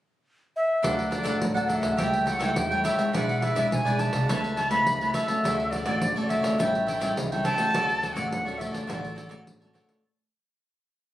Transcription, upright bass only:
0.84 1.21 D2 medium
1.26 1.39 A1 medium
1.41 1.78 D2 medium
1.82 1.96 D2 medium
1.99 2.48 C#2 medium
2.57 2.81 E2 medium
3.14 3.51 B1 medium
3.55 3.68 B1 medium
3.71 4.08 B1 medium
4.13 4.26 C2 medium
4.29 4.78 C#2 medium
4.86 5.11 C#2 medium
5.45 5.81 D2 medium
5.86 5.99 A1 medium
6.02 6.38 D2 medium
6.44 6.56 D2 medium
6.59 7.08 A1 medium
7.17 7.41 C#2 medium
7.74 8.11 D2 medium
8.16 8.29 A1 medium
8.31 8.68 D2 medium
8.73 8.86 D2 medium
8.89 9.38 A1 medium
9.47 9.71 A1 medium

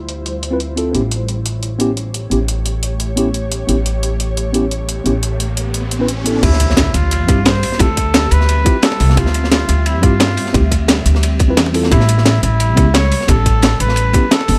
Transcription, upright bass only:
0.00 0.93 D2 medium
0.95 2.30 A1 medium
2.31 3.67 A1 medium
3.69 5.04 A1 medium
5.06 6.41 A1 medium
6.43 6.93 D2 loud
6.94 7.29 D2 medium
7.29 7.62 G2 loud
7.80 8.30 D2 loud
8.31 8.65 D2 medium
9.00 9.16 C2 loud
9.17 9.67 D2 loud
9.69 10.03 D2 medium
10.03 10.36 G2 loud
10.54 11.05 D2 loud
11.06 11.57 D2 medium
11.57 11.90 E2 loud
11.92 12.42 A1 loud
12.43 12.77 A1 medium
12.77 13.10 C#2 medium
13.29 13.79 A1 loud
13.80 14.13 A1 medium
14.49 14.59 G1 medium

